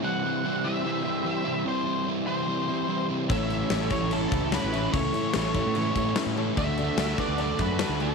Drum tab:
CC |--------|--------|xxxxxxxx|xxxxxxxx|
SD |--------|--------|--o---o-|--o---o-|
BD |--------|--------|o--o-o--|o--o-o--|

CC |xxxxxxxx|
SD |--o---o-|
BD |o--o-o--|